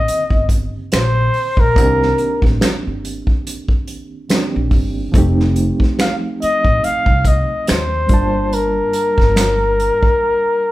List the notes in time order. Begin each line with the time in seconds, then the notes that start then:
Already playing: D3 D#3 A#3 C4 G4 D#5
0.08 muted upright bass stroke, closed hi-hat
0.30 G1, kick
0.49 kick, closed hi-hat
0.92 A#1 C5, finger snap, snare, closed hi-hat
1.34 open hi-hat
1.57 A#1 A#4, kick
1.74 C2 D#3 A#3 C4, kick
1.78 D4 G4, closed hi-hat
2.02 snare
2.18 closed hi-hat
2.42 A1, kick, snare
2.61 finger snap, snare, closed hi-hat
2.87 G1
3.05 closed hi-hat
3.27 kick
3.47 closed hi-hat
3.69 kick
3.88 closed hi-hat
4.29 D#3 A#3 C4 D4 G4, finger snap, snare, closed hi-hat
4.56 A#1
4.71 G1, kick, open hi-hat
5.12 F1 F3 A3 C4, kick, closed hi-hat
5.17 D#4 G4
5.40 snare
5.56 closed hi-hat
5.80 kick, snare
5.99 F5, finger snap, snare, closed hi-hat
6.42 D#5, muted upright bass stroke, closed hi-hat
6.65 A1, kick
6.84 F5, muted upright bass stroke, closed hi-hat
7.06 C2, kick
7.25 D#5, kick, closed hi-hat
7.67 D#2 C5, finger snap, snare, closed hi-hat
8.07 G1 G3 A#3 D4, kick, closed hi-hat
8.12 F4 A5
8.53 A#4, closed hi-hat
8.93 closed hi-hat
9.18 G1, kick, snare
9.36 finger snap, snare, closed hi-hat
9.80 closed hi-hat
10.03 kick